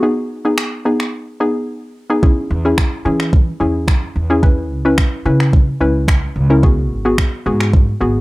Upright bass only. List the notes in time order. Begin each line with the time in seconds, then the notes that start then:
2.50 E2
3.05 E3
3.61 E2
4.16 E2
4.71 C#2
5.25 C#3
5.81 C#2
6.36 C#2
6.91 G#1
7.46 G#2
8.01 G#1